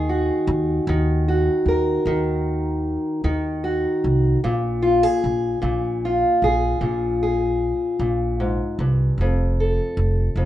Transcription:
Already playing: upright bass D#2, steel-string acoustic guitar D#3 G#4
0.09 steel-string acoustic guitar F#4
0.47 upright bass D#2
0.87 upright bass D#2, steel-string acoustic guitar D#3
1.28 steel-string acoustic guitar F#4
1.66 upright bass D#2, steel-string acoustic guitar A#4
2.06 upright bass D#2, steel-string acoustic guitar D#3
3.24 upright bass D#2, steel-string acoustic guitar D#3
3.64 steel-string acoustic guitar F#4
4.04 upright bass C2
4.44 upright bass A#1, steel-string acoustic guitar A#2
4.82 steel-string acoustic guitar F4
5.03 steel-string acoustic guitar G#4
5.24 upright bass A#1
5.62 upright bass A#1, steel-string acoustic guitar A#2
6.05 steel-string acoustic guitar F4
6.42 upright bass A#1, steel-string acoustic guitar G#4
6.81 upright bass A#1, steel-string acoustic guitar A#2
7.23 steel-string acoustic guitar G#4
7.99 upright bass A#1, steel-string acoustic guitar A#2
8.40 steel-string acoustic guitar G#2
8.79 upright bass C2, steel-string acoustic guitar G2
9.18 upright bass F1, steel-string acoustic guitar F2
9.60 steel-string acoustic guitar A4
9.97 upright bass F1
10.36 upright bass F1, steel-string acoustic guitar F2

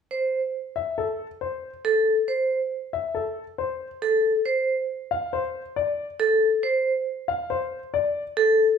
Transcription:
0.11 vibraphone C5
0.76 grand piano E5
0.98 grand piano A4
1.41 grand piano C5
1.85 vibraphone A4
2.28 vibraphone C5
2.93 grand piano E5
3.15 grand piano A4
3.58 grand piano C5
4.02 vibraphone A4
4.46 vibraphone C5
5.11 grand piano F5
5.33 grand piano C5
5.76 grand piano D5
6.20 vibraphone A4
6.63 vibraphone C5
7.28 grand piano F5
7.50 grand piano C5
7.94 grand piano D5
8.37 vibraphone A4

